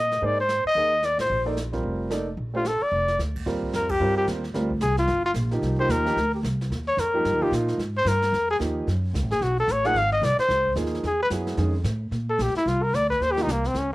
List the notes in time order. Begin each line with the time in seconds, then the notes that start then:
Already playing: A#2 D#5
0.12 snare
0.22 G#2 A#3 D#4 G#4 C5 D5, brush sweep
0.41 C5
0.49 snare, hi-hat pedal
0.65 D#5, muted upright bass stroke
0.75 D#2 A#3 D#4 G#4 D#5, brush sweep
1.03 D5, snare, hi-hat pedal
1.18 A1 C5, snare, ride
1.30 A#1, brush sweep
1.45 A#3 D#4 A4 D5
1.57 snare, hi-hat pedal
1.73 G3 C4 F4 A#4, kick, snare
1.83 F1, brush sweep
2.10 A#3 D#4 A4 D5, snare, hi-hat pedal
2.37 A#1, brush sweep
2.54 A3 D4 F4 G4 C5
2.65 A4, snare, hi-hat pedal
2.81 D5, muted upright bass stroke
2.92 F1
3.08 snare
3.18 D2, snare, hi-hat pedal
3.36 kick, crash
3.46 D#2 G3 C4 F4 A#4, brush sweep, snare
3.63 kick
3.73 F2 A#4, snare, hi-hat pedal
3.89 G4, kick, crash
4.00 G2 G3 C4 F4 A#4, brush sweep
4.17 G4
4.27 D#2, snare, hi-hat pedal
4.44 snare
4.54 D2 G3 C4 F4 A#4, brush sweep, snare
4.71 kick
4.81 C2 G#4, snare, hi-hat pedal
4.97 F4, snare
5.07 G1, brush sweep, snare
5.26 F4
5.34 A#1, snare, hi-hat pedal
5.51 F3 A#3 D#4 G4, snare
5.62 C2, brush sweep, snare
5.78 F3 A#3 D#4 G4 C5
5.88 D#2 A#4, snare, hi-hat pedal
6.05 F3 A#3 D#4 G4, snare
6.16 D2, brush sweep, snare
6.35 G4
6.43 C2, snare, hi-hat pedal
6.61 snare
6.70 D#2, brush sweep, snare
6.88 C#5
6.97 F2 A#4, snare, hi-hat pedal
7.13 F3 A#3 D#4 G4
7.25 G2, brush sweep, snare
7.34 D#2
7.41 C#2 F3 A#3 D#4 F4 G4
7.51 A#2, snare, hi-hat pedal
7.68 snare
7.78 G#2, brush sweep, snare
7.97 C5
8.05 G2 A#4, snare, hi-hat pedal
8.22 snare
8.32 F2, brush sweep, snare
8.51 G#4
8.59 D#2 F3 A#3 D#4 G4, snare, hi-hat pedal
8.87 F#2, brush sweep, snare
9.14 C#2, snare, hi-hat pedal
9.22 A1
9.31 F#1 G#4, snare
9.41 B1 F#4, brush sweep, snare
9.60 A4
9.68 A1, snare, hi-hat pedal
9.72 C#5
9.84 F3 A#3 D#4 G#4 F#5, snare
9.94 G#1 F5, brush sweep, snare
10.12 D#5
10.22 C2 D5, snare, hi-hat pedal
10.37 C5, muted upright bass stroke, snare
10.49 C#2, brush sweep, snare
10.66 kick
10.76 D#2 F3 A#3 D#4 G#4, snare, hi-hat pedal
10.86 snare
10.95 snare
11.03 E2 G#4, brush sweep, snare
11.23 B4
11.30 F#2 F#3 B3 E4 G#4, snare, hi-hat pedal
11.47 snare
11.57 F2 D#3 G#3 C#4 G#4, brush sweep, snare
11.84 A2, snare, hi-hat pedal
12.11 A#2, brush sweep, snare
12.30 A4
12.38 A#1, snare, hi-hat pedal
12.42 G4
12.48 snare
12.54 E4, muted upright bass stroke, snare
12.57 snare
12.65 C2 F4, brush sweep, snare
12.83 A#4
12.93 D2 D5, snare, hi-hat pedal
13.10 B4, kick, snare
13.20 D#2 C5, brush sweep, snare
13.32 F3 G4
13.36 A#3 D#4 G4, snare
13.43 D#4
13.47 C2, snare, hi-hat pedal
13.52 A#3
13.64 C4, snare
13.74 C#2, brush sweep, snare
13.78 C#4